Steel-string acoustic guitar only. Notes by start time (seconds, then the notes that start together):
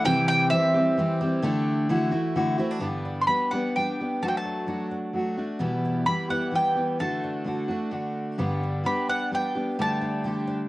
0.04 C3 E3 G3 C4 G4
0.52 E3 G3 C4 G4
0.74 G3 C4 G4
0.97 E3 G3 C4 G4
1.21 G3 C4 G4
1.42 D3 A3 D4 G4
1.89 D3 A3 E4 F#4
2.11 A3 E4 F#4
2.36 D3 A3 E4 F#4
2.58 A3 E4 F#4
2.80 G2 D3 G3 B3 D4 G4
3.28 G3 B3 D4 G4
3.53 G3 B3 D4 G4
3.77 G3 B3 D4 G4
4.00 G3 B3 D4 G4
4.23 F#3 A3 D4 F#4
4.67 F#3 A3 D4 F#4
5.13 F#3 A3 D4 F#4
5.37 A3 D4 F#4
5.59 E2 B2 E3 G3 B3 G4
6.06 E3 G3 B3 G4
6.29 E3 G3 B3 G4
6.51 E3 G3 B3 G4
6.75 E3 G3 B3 G4
6.99 D3 A3 D4 F#4
7.44 D3 A3 D4 F#4
7.68 A3 D4 F#4
7.91 D3 A3 D4 F#4
8.38 G2 D3 G3 B3 D4 G4
8.83 G3 B3 D4 G4
9.32 G3 B3 D4 G4
9.55 G3 B3 D4 G4
9.79 D3 A3 D4 G4
10.25 D3 A3 D4 G4